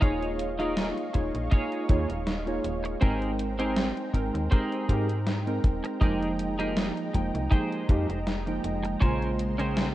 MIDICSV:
0, 0, Header, 1, 7, 480
1, 0, Start_track
1, 0, Tempo, 750000
1, 12, Time_signature, 4, 2, 24, 8
1, 6365, End_track
2, 0, Start_track
2, 0, Title_t, "Analog synth pad"
2, 0, Program_c, 0, 89
2, 11, Note_on_c, 0, 56, 83
2, 11, Note_on_c, 0, 85, 98
2, 12, Note_on_c, 0, 77, 79
2, 13, Note_on_c, 0, 75, 81
2, 1912, Note_off_c, 0, 85, 0
2, 1913, Note_off_c, 0, 75, 0
2, 1913, Note_off_c, 0, 77, 0
2, 1931, Note_on_c, 0, 72, 75
2, 1932, Note_on_c, 0, 79, 80
2, 1932, Note_on_c, 0, 82, 94
2, 3832, Note_off_c, 0, 72, 0
2, 3850, Note_on_c, 0, 75, 78
2, 5746, Note_off_c, 0, 79, 0
2, 5752, Note_off_c, 0, 75, 0
2, 5769, Note_on_c, 0, 84, 97
2, 6365, Note_off_c, 0, 56, 0
2, 6365, Note_off_c, 0, 82, 0
2, 6365, Note_off_c, 0, 84, 0
2, 6365, End_track
3, 0, Start_track
3, 0, Title_t, "Clean electric guitar"
3, 0, Program_c, 1, 27
3, 5, Note_on_c, 1, 63, 117
3, 9, Note_on_c, 1, 65, 105
3, 12, Note_on_c, 1, 68, 104
3, 16, Note_on_c, 1, 73, 127
3, 194, Note_off_c, 1, 63, 0
3, 196, Note_off_c, 1, 65, 0
3, 197, Note_off_c, 1, 68, 0
3, 199, Note_off_c, 1, 73, 0
3, 377, Note_on_c, 1, 63, 89
3, 380, Note_on_c, 1, 65, 79
3, 387, Note_on_c, 1, 68, 68
3, 390, Note_on_c, 1, 70, 91
3, 555, Note_off_c, 1, 63, 0
3, 557, Note_off_c, 1, 65, 0
3, 558, Note_off_c, 1, 68, 0
3, 561, Note_off_c, 1, 70, 0
3, 968, Note_on_c, 1, 63, 84
3, 971, Note_on_c, 1, 65, 84
3, 975, Note_on_c, 1, 68, 85
3, 979, Note_on_c, 1, 73, 100
3, 1395, Note_off_c, 1, 63, 0
3, 1397, Note_off_c, 1, 65, 0
3, 1399, Note_off_c, 1, 68, 0
3, 1401, Note_off_c, 1, 73, 0
3, 1926, Note_on_c, 1, 60, 116
3, 1930, Note_on_c, 1, 67, 101
3, 1933, Note_on_c, 1, 68, 108
3, 1937, Note_on_c, 1, 70, 121
3, 2114, Note_off_c, 1, 60, 0
3, 2116, Note_off_c, 1, 67, 0
3, 2118, Note_off_c, 1, 68, 0
3, 2120, Note_off_c, 1, 70, 0
3, 2296, Note_on_c, 1, 60, 87
3, 2300, Note_on_c, 1, 67, 80
3, 2304, Note_on_c, 1, 68, 80
3, 2309, Note_on_c, 1, 70, 97
3, 2474, Note_off_c, 1, 60, 0
3, 2476, Note_off_c, 1, 67, 0
3, 2478, Note_off_c, 1, 68, 0
3, 2481, Note_off_c, 1, 70, 0
3, 2886, Note_on_c, 1, 60, 88
3, 2890, Note_on_c, 1, 67, 86
3, 2895, Note_on_c, 1, 68, 80
3, 2899, Note_on_c, 1, 70, 98
3, 3315, Note_off_c, 1, 60, 0
3, 3316, Note_off_c, 1, 67, 0
3, 3319, Note_off_c, 1, 68, 0
3, 3321, Note_off_c, 1, 70, 0
3, 3845, Note_on_c, 1, 63, 116
3, 3849, Note_on_c, 1, 67, 101
3, 3853, Note_on_c, 1, 68, 104
3, 3856, Note_on_c, 1, 70, 122
3, 4034, Note_off_c, 1, 63, 0
3, 4036, Note_off_c, 1, 67, 0
3, 4038, Note_off_c, 1, 68, 0
3, 4039, Note_off_c, 1, 70, 0
3, 4216, Note_on_c, 1, 63, 90
3, 4220, Note_on_c, 1, 67, 80
3, 4225, Note_on_c, 1, 68, 80
3, 4229, Note_on_c, 1, 70, 98
3, 4394, Note_off_c, 1, 63, 0
3, 4396, Note_off_c, 1, 67, 0
3, 4398, Note_off_c, 1, 68, 0
3, 4400, Note_off_c, 1, 70, 0
3, 4805, Note_on_c, 1, 63, 92
3, 4808, Note_on_c, 1, 67, 78
3, 4812, Note_on_c, 1, 68, 79
3, 4815, Note_on_c, 1, 72, 105
3, 5234, Note_off_c, 1, 63, 0
3, 5235, Note_off_c, 1, 67, 0
3, 5237, Note_off_c, 1, 68, 0
3, 5239, Note_off_c, 1, 72, 0
3, 5763, Note_on_c, 1, 61, 114
3, 5766, Note_on_c, 1, 68, 108
3, 5770, Note_on_c, 1, 70, 109
3, 5774, Note_on_c, 1, 72, 127
3, 5953, Note_off_c, 1, 61, 0
3, 5954, Note_off_c, 1, 68, 0
3, 5956, Note_off_c, 1, 70, 0
3, 5958, Note_off_c, 1, 72, 0
3, 6134, Note_on_c, 1, 61, 84
3, 6139, Note_on_c, 1, 68, 84
3, 6142, Note_on_c, 1, 70, 84
3, 6147, Note_on_c, 1, 72, 95
3, 6313, Note_off_c, 1, 61, 0
3, 6315, Note_off_c, 1, 68, 0
3, 6317, Note_off_c, 1, 70, 0
3, 6319, Note_off_c, 1, 72, 0
3, 6365, End_track
4, 0, Start_track
4, 0, Title_t, "Synth keys"
4, 0, Program_c, 2, 88
4, 9, Note_on_c, 2, 58, 90
4, 11, Note_on_c, 2, 63, 83
4, 13, Note_on_c, 2, 65, 88
4, 15, Note_on_c, 2, 68, 84
4, 19, Note_on_c, 2, 73, 108
4, 350, Note_off_c, 2, 58, 0
4, 351, Note_off_c, 2, 63, 0
4, 352, Note_off_c, 2, 65, 0
4, 353, Note_off_c, 2, 68, 0
4, 355, Note_off_c, 2, 73, 0
4, 380, Note_on_c, 2, 58, 79
4, 381, Note_on_c, 2, 63, 70
4, 384, Note_on_c, 2, 65, 74
4, 387, Note_on_c, 2, 68, 74
4, 390, Note_on_c, 2, 75, 84
4, 705, Note_off_c, 2, 58, 0
4, 705, Note_off_c, 2, 63, 0
4, 707, Note_off_c, 2, 65, 0
4, 708, Note_off_c, 2, 68, 0
4, 710, Note_off_c, 2, 75, 0
4, 728, Note_on_c, 2, 58, 77
4, 730, Note_on_c, 2, 63, 74
4, 732, Note_on_c, 2, 65, 74
4, 734, Note_on_c, 2, 68, 77
4, 736, Note_on_c, 2, 73, 91
4, 944, Note_off_c, 2, 58, 0
4, 945, Note_off_c, 2, 63, 0
4, 946, Note_off_c, 2, 65, 0
4, 947, Note_off_c, 2, 68, 0
4, 948, Note_off_c, 2, 73, 0
4, 969, Note_on_c, 2, 58, 87
4, 969, Note_on_c, 2, 63, 78
4, 972, Note_on_c, 2, 65, 76
4, 975, Note_on_c, 2, 68, 76
4, 977, Note_on_c, 2, 73, 94
4, 1184, Note_off_c, 2, 58, 0
4, 1184, Note_off_c, 2, 63, 0
4, 1186, Note_off_c, 2, 65, 0
4, 1187, Note_off_c, 2, 68, 0
4, 1188, Note_off_c, 2, 73, 0
4, 1206, Note_on_c, 2, 58, 93
4, 1211, Note_on_c, 2, 63, 86
4, 1214, Note_on_c, 2, 65, 87
4, 1216, Note_on_c, 2, 68, 90
4, 1217, Note_on_c, 2, 73, 102
4, 1328, Note_off_c, 2, 58, 0
4, 1330, Note_off_c, 2, 63, 0
4, 1331, Note_off_c, 2, 65, 0
4, 1332, Note_off_c, 2, 68, 0
4, 1333, Note_off_c, 2, 73, 0
4, 1575, Note_on_c, 2, 58, 80
4, 1578, Note_on_c, 2, 63, 72
4, 1578, Note_on_c, 2, 65, 74
4, 1581, Note_on_c, 2, 68, 69
4, 1584, Note_on_c, 2, 73, 90
4, 1902, Note_off_c, 2, 58, 0
4, 1903, Note_off_c, 2, 63, 0
4, 1904, Note_off_c, 2, 65, 0
4, 1905, Note_off_c, 2, 68, 0
4, 1907, Note_off_c, 2, 73, 0
4, 1924, Note_on_c, 2, 56, 96
4, 1926, Note_on_c, 2, 60, 85
4, 1928, Note_on_c, 2, 63, 86
4, 1932, Note_on_c, 2, 79, 85
4, 1933, Note_on_c, 2, 70, 103
4, 2267, Note_off_c, 2, 56, 0
4, 2268, Note_off_c, 2, 60, 0
4, 2269, Note_off_c, 2, 63, 0
4, 2271, Note_off_c, 2, 79, 0
4, 2272, Note_off_c, 2, 70, 0
4, 2296, Note_on_c, 2, 56, 86
4, 2298, Note_on_c, 2, 60, 79
4, 2300, Note_on_c, 2, 63, 78
4, 2304, Note_on_c, 2, 79, 77
4, 2306, Note_on_c, 2, 72, 89
4, 2622, Note_off_c, 2, 56, 0
4, 2624, Note_off_c, 2, 60, 0
4, 2625, Note_off_c, 2, 63, 0
4, 2626, Note_off_c, 2, 79, 0
4, 2628, Note_off_c, 2, 72, 0
4, 2644, Note_on_c, 2, 56, 82
4, 2646, Note_on_c, 2, 60, 76
4, 2650, Note_on_c, 2, 63, 71
4, 2651, Note_on_c, 2, 79, 70
4, 2653, Note_on_c, 2, 70, 91
4, 2862, Note_off_c, 2, 56, 0
4, 2863, Note_off_c, 2, 60, 0
4, 2865, Note_off_c, 2, 63, 0
4, 2865, Note_off_c, 2, 79, 0
4, 2866, Note_off_c, 2, 70, 0
4, 2887, Note_on_c, 2, 56, 83
4, 2889, Note_on_c, 2, 60, 80
4, 2893, Note_on_c, 2, 63, 78
4, 2894, Note_on_c, 2, 79, 79
4, 2895, Note_on_c, 2, 70, 92
4, 3103, Note_off_c, 2, 56, 0
4, 3104, Note_off_c, 2, 60, 0
4, 3106, Note_off_c, 2, 63, 0
4, 3107, Note_off_c, 2, 70, 0
4, 3107, Note_off_c, 2, 79, 0
4, 3126, Note_on_c, 2, 56, 94
4, 3128, Note_on_c, 2, 60, 93
4, 3131, Note_on_c, 2, 63, 83
4, 3133, Note_on_c, 2, 67, 89
4, 3135, Note_on_c, 2, 70, 101
4, 3248, Note_off_c, 2, 56, 0
4, 3249, Note_off_c, 2, 60, 0
4, 3250, Note_off_c, 2, 63, 0
4, 3251, Note_off_c, 2, 67, 0
4, 3252, Note_off_c, 2, 70, 0
4, 3498, Note_on_c, 2, 56, 84
4, 3500, Note_on_c, 2, 60, 75
4, 3502, Note_on_c, 2, 63, 70
4, 3505, Note_on_c, 2, 79, 76
4, 3507, Note_on_c, 2, 70, 91
4, 3823, Note_off_c, 2, 56, 0
4, 3825, Note_off_c, 2, 60, 0
4, 3826, Note_off_c, 2, 63, 0
4, 3827, Note_off_c, 2, 79, 0
4, 3828, Note_off_c, 2, 70, 0
4, 3847, Note_on_c, 2, 53, 98
4, 3849, Note_on_c, 2, 56, 89
4, 3852, Note_on_c, 2, 58, 90
4, 3854, Note_on_c, 2, 63, 92
4, 3857, Note_on_c, 2, 79, 107
4, 4189, Note_off_c, 2, 53, 0
4, 4190, Note_off_c, 2, 56, 0
4, 4191, Note_off_c, 2, 58, 0
4, 4192, Note_off_c, 2, 63, 0
4, 4194, Note_off_c, 2, 79, 0
4, 4217, Note_on_c, 2, 53, 84
4, 4221, Note_on_c, 2, 56, 75
4, 4222, Note_on_c, 2, 58, 72
4, 4225, Note_on_c, 2, 63, 77
4, 4543, Note_off_c, 2, 53, 0
4, 4545, Note_off_c, 2, 56, 0
4, 4546, Note_off_c, 2, 58, 0
4, 4547, Note_off_c, 2, 63, 0
4, 4567, Note_on_c, 2, 53, 83
4, 4569, Note_on_c, 2, 56, 71
4, 4571, Note_on_c, 2, 58, 74
4, 4574, Note_on_c, 2, 63, 71
4, 4577, Note_on_c, 2, 79, 91
4, 4783, Note_off_c, 2, 53, 0
4, 4784, Note_off_c, 2, 56, 0
4, 4785, Note_off_c, 2, 58, 0
4, 4787, Note_off_c, 2, 63, 0
4, 4788, Note_off_c, 2, 79, 0
4, 4805, Note_on_c, 2, 53, 80
4, 4806, Note_on_c, 2, 56, 77
4, 4810, Note_on_c, 2, 58, 82
4, 4811, Note_on_c, 2, 63, 80
4, 4813, Note_on_c, 2, 79, 91
4, 5022, Note_off_c, 2, 53, 0
4, 5023, Note_off_c, 2, 56, 0
4, 5025, Note_off_c, 2, 58, 0
4, 5025, Note_off_c, 2, 63, 0
4, 5026, Note_off_c, 2, 79, 0
4, 5044, Note_on_c, 2, 53, 98
4, 5047, Note_on_c, 2, 56, 86
4, 5049, Note_on_c, 2, 58, 83
4, 5051, Note_on_c, 2, 63, 88
4, 5054, Note_on_c, 2, 67, 102
4, 5167, Note_off_c, 2, 53, 0
4, 5168, Note_off_c, 2, 56, 0
4, 5169, Note_off_c, 2, 58, 0
4, 5170, Note_off_c, 2, 63, 0
4, 5172, Note_off_c, 2, 67, 0
4, 5419, Note_on_c, 2, 53, 81
4, 5421, Note_on_c, 2, 56, 74
4, 5423, Note_on_c, 2, 58, 71
4, 5425, Note_on_c, 2, 63, 75
4, 5429, Note_on_c, 2, 79, 86
4, 5744, Note_off_c, 2, 53, 0
4, 5745, Note_off_c, 2, 56, 0
4, 5746, Note_off_c, 2, 58, 0
4, 5747, Note_off_c, 2, 63, 0
4, 5749, Note_off_c, 2, 79, 0
4, 5769, Note_on_c, 2, 49, 97
4, 5769, Note_on_c, 2, 56, 90
4, 5773, Note_on_c, 2, 58, 92
4, 5775, Note_on_c, 2, 72, 87
4, 5778, Note_on_c, 2, 65, 107
4, 6110, Note_off_c, 2, 49, 0
4, 6110, Note_off_c, 2, 56, 0
4, 6112, Note_off_c, 2, 58, 0
4, 6113, Note_off_c, 2, 72, 0
4, 6114, Note_off_c, 2, 65, 0
4, 6140, Note_on_c, 2, 49, 83
4, 6142, Note_on_c, 2, 56, 72
4, 6145, Note_on_c, 2, 58, 73
4, 6146, Note_on_c, 2, 72, 77
4, 6150, Note_on_c, 2, 79, 86
4, 6365, Note_off_c, 2, 49, 0
4, 6365, Note_off_c, 2, 56, 0
4, 6365, Note_off_c, 2, 58, 0
4, 6365, Note_off_c, 2, 72, 0
4, 6365, Note_off_c, 2, 79, 0
4, 6365, End_track
5, 0, Start_track
5, 0, Title_t, "FM bass"
5, 0, Program_c, 3, 39
5, 13, Note_on_c, 3, 27, 97
5, 591, Note_off_c, 3, 27, 0
5, 735, Note_on_c, 3, 27, 84
5, 844, Note_off_c, 3, 27, 0
5, 862, Note_on_c, 3, 34, 93
5, 955, Note_off_c, 3, 34, 0
5, 1213, Note_on_c, 3, 39, 108
5, 1323, Note_off_c, 3, 39, 0
5, 1341, Note_on_c, 3, 27, 102
5, 1664, Note_off_c, 3, 27, 0
5, 1691, Note_on_c, 3, 27, 95
5, 1898, Note_off_c, 3, 27, 0
5, 1935, Note_on_c, 3, 32, 101
5, 2512, Note_off_c, 3, 32, 0
5, 2648, Note_on_c, 3, 32, 86
5, 2760, Note_off_c, 3, 32, 0
5, 2779, Note_on_c, 3, 39, 100
5, 2873, Note_off_c, 3, 39, 0
5, 3130, Note_on_c, 3, 44, 96
5, 3584, Note_off_c, 3, 44, 0
5, 3610, Note_on_c, 3, 27, 89
5, 3721, Note_off_c, 3, 27, 0
5, 3849, Note_on_c, 3, 29, 99
5, 4429, Note_off_c, 3, 29, 0
5, 4574, Note_on_c, 3, 29, 87
5, 4683, Note_off_c, 3, 29, 0
5, 4700, Note_on_c, 3, 36, 99
5, 4794, Note_off_c, 3, 36, 0
5, 5052, Note_on_c, 3, 41, 108
5, 5162, Note_off_c, 3, 41, 0
5, 5178, Note_on_c, 3, 29, 108
5, 5503, Note_off_c, 3, 29, 0
5, 5531, Note_on_c, 3, 29, 99
5, 5738, Note_off_c, 3, 29, 0
5, 5771, Note_on_c, 3, 34, 103
5, 6350, Note_off_c, 3, 34, 0
5, 6365, End_track
6, 0, Start_track
6, 0, Title_t, "Muted clean electric guitar strokes"
6, 726, Note_on_c, 9, 29, 33
6, 790, Note_off_c, 9, 29, 0
6, 1817, Note_on_c, 9, 29, 89
6, 1881, Note_off_c, 9, 29, 0
6, 2647, Note_on_c, 9, 29, 31
6, 2711, Note_off_c, 9, 29, 0
6, 3737, Note_on_c, 9, 29, 86
6, 3801, Note_off_c, 9, 29, 0
6, 4567, Note_on_c, 9, 29, 33
6, 4631, Note_off_c, 9, 29, 0
6, 5654, Note_on_c, 9, 29, 90
6, 5718, Note_off_c, 9, 29, 0
6, 6365, End_track
7, 0, Start_track
7, 0, Title_t, "Drums"
7, 14, Note_on_c, 9, 36, 122
7, 14, Note_on_c, 9, 42, 57
7, 78, Note_off_c, 9, 36, 0
7, 78, Note_off_c, 9, 42, 0
7, 143, Note_on_c, 9, 42, 28
7, 207, Note_off_c, 9, 42, 0
7, 251, Note_on_c, 9, 42, 95
7, 315, Note_off_c, 9, 42, 0
7, 382, Note_on_c, 9, 42, 53
7, 446, Note_off_c, 9, 42, 0
7, 492, Note_on_c, 9, 38, 116
7, 492, Note_on_c, 9, 42, 58
7, 556, Note_off_c, 9, 38, 0
7, 556, Note_off_c, 9, 42, 0
7, 623, Note_on_c, 9, 42, 28
7, 687, Note_off_c, 9, 42, 0
7, 730, Note_on_c, 9, 42, 94
7, 736, Note_on_c, 9, 36, 63
7, 794, Note_off_c, 9, 42, 0
7, 800, Note_off_c, 9, 36, 0
7, 862, Note_on_c, 9, 42, 55
7, 926, Note_off_c, 9, 42, 0
7, 970, Note_on_c, 9, 42, 55
7, 974, Note_on_c, 9, 36, 121
7, 1034, Note_off_c, 9, 42, 0
7, 1038, Note_off_c, 9, 36, 0
7, 1100, Note_on_c, 9, 42, 27
7, 1164, Note_off_c, 9, 42, 0
7, 1210, Note_on_c, 9, 42, 97
7, 1212, Note_on_c, 9, 36, 114
7, 1274, Note_off_c, 9, 42, 0
7, 1276, Note_off_c, 9, 36, 0
7, 1342, Note_on_c, 9, 42, 58
7, 1406, Note_off_c, 9, 42, 0
7, 1452, Note_on_c, 9, 38, 118
7, 1452, Note_on_c, 9, 42, 54
7, 1516, Note_off_c, 9, 38, 0
7, 1516, Note_off_c, 9, 42, 0
7, 1581, Note_on_c, 9, 42, 28
7, 1645, Note_off_c, 9, 42, 0
7, 1692, Note_on_c, 9, 42, 92
7, 1756, Note_off_c, 9, 42, 0
7, 1823, Note_on_c, 9, 42, 53
7, 1887, Note_off_c, 9, 42, 0
7, 1931, Note_on_c, 9, 42, 54
7, 1936, Note_on_c, 9, 36, 123
7, 1995, Note_off_c, 9, 42, 0
7, 2000, Note_off_c, 9, 36, 0
7, 2060, Note_on_c, 9, 42, 27
7, 2124, Note_off_c, 9, 42, 0
7, 2171, Note_on_c, 9, 42, 99
7, 2235, Note_off_c, 9, 42, 0
7, 2300, Note_on_c, 9, 42, 55
7, 2364, Note_off_c, 9, 42, 0
7, 2409, Note_on_c, 9, 38, 127
7, 2409, Note_on_c, 9, 42, 56
7, 2473, Note_off_c, 9, 38, 0
7, 2473, Note_off_c, 9, 42, 0
7, 2541, Note_on_c, 9, 42, 27
7, 2605, Note_off_c, 9, 42, 0
7, 2648, Note_on_c, 9, 36, 61
7, 2652, Note_on_c, 9, 42, 91
7, 2712, Note_off_c, 9, 36, 0
7, 2716, Note_off_c, 9, 42, 0
7, 2784, Note_on_c, 9, 42, 57
7, 2848, Note_off_c, 9, 42, 0
7, 2892, Note_on_c, 9, 42, 58
7, 2895, Note_on_c, 9, 36, 120
7, 2956, Note_off_c, 9, 42, 0
7, 2959, Note_off_c, 9, 36, 0
7, 3022, Note_on_c, 9, 42, 28
7, 3086, Note_off_c, 9, 42, 0
7, 3130, Note_on_c, 9, 36, 67
7, 3132, Note_on_c, 9, 42, 99
7, 3194, Note_off_c, 9, 36, 0
7, 3196, Note_off_c, 9, 42, 0
7, 3260, Note_on_c, 9, 42, 54
7, 3324, Note_off_c, 9, 42, 0
7, 3370, Note_on_c, 9, 38, 127
7, 3370, Note_on_c, 9, 42, 57
7, 3434, Note_off_c, 9, 38, 0
7, 3434, Note_off_c, 9, 42, 0
7, 3502, Note_on_c, 9, 42, 29
7, 3566, Note_off_c, 9, 42, 0
7, 3609, Note_on_c, 9, 42, 94
7, 3610, Note_on_c, 9, 36, 100
7, 3673, Note_off_c, 9, 42, 0
7, 3674, Note_off_c, 9, 36, 0
7, 3741, Note_on_c, 9, 42, 54
7, 3805, Note_off_c, 9, 42, 0
7, 3849, Note_on_c, 9, 36, 123
7, 3851, Note_on_c, 9, 42, 55
7, 3913, Note_off_c, 9, 36, 0
7, 3915, Note_off_c, 9, 42, 0
7, 3983, Note_on_c, 9, 42, 27
7, 4047, Note_off_c, 9, 42, 0
7, 4091, Note_on_c, 9, 42, 95
7, 4155, Note_off_c, 9, 42, 0
7, 4222, Note_on_c, 9, 42, 50
7, 4286, Note_off_c, 9, 42, 0
7, 4331, Note_on_c, 9, 38, 127
7, 4331, Note_on_c, 9, 42, 58
7, 4395, Note_off_c, 9, 38, 0
7, 4395, Note_off_c, 9, 42, 0
7, 4462, Note_on_c, 9, 42, 27
7, 4526, Note_off_c, 9, 42, 0
7, 4572, Note_on_c, 9, 42, 93
7, 4573, Note_on_c, 9, 36, 62
7, 4636, Note_off_c, 9, 42, 0
7, 4637, Note_off_c, 9, 36, 0
7, 4704, Note_on_c, 9, 42, 57
7, 4768, Note_off_c, 9, 42, 0
7, 4812, Note_on_c, 9, 36, 125
7, 4813, Note_on_c, 9, 42, 54
7, 4876, Note_off_c, 9, 36, 0
7, 4877, Note_off_c, 9, 42, 0
7, 4944, Note_on_c, 9, 42, 28
7, 5008, Note_off_c, 9, 42, 0
7, 5050, Note_on_c, 9, 42, 96
7, 5051, Note_on_c, 9, 36, 121
7, 5114, Note_off_c, 9, 42, 0
7, 5115, Note_off_c, 9, 36, 0
7, 5182, Note_on_c, 9, 42, 54
7, 5246, Note_off_c, 9, 42, 0
7, 5292, Note_on_c, 9, 38, 123
7, 5292, Note_on_c, 9, 42, 53
7, 5356, Note_off_c, 9, 38, 0
7, 5356, Note_off_c, 9, 42, 0
7, 5421, Note_on_c, 9, 42, 27
7, 5485, Note_off_c, 9, 42, 0
7, 5531, Note_on_c, 9, 42, 92
7, 5595, Note_off_c, 9, 42, 0
7, 5662, Note_on_c, 9, 42, 51
7, 5726, Note_off_c, 9, 42, 0
7, 5772, Note_on_c, 9, 36, 111
7, 5773, Note_on_c, 9, 42, 54
7, 5836, Note_off_c, 9, 36, 0
7, 5837, Note_off_c, 9, 42, 0
7, 5903, Note_on_c, 9, 42, 27
7, 5967, Note_off_c, 9, 42, 0
7, 6012, Note_on_c, 9, 42, 94
7, 6076, Note_off_c, 9, 42, 0
7, 6141, Note_on_c, 9, 42, 51
7, 6205, Note_off_c, 9, 42, 0
7, 6252, Note_on_c, 9, 38, 127
7, 6252, Note_on_c, 9, 42, 53
7, 6316, Note_off_c, 9, 38, 0
7, 6316, Note_off_c, 9, 42, 0
7, 6365, End_track
0, 0, End_of_file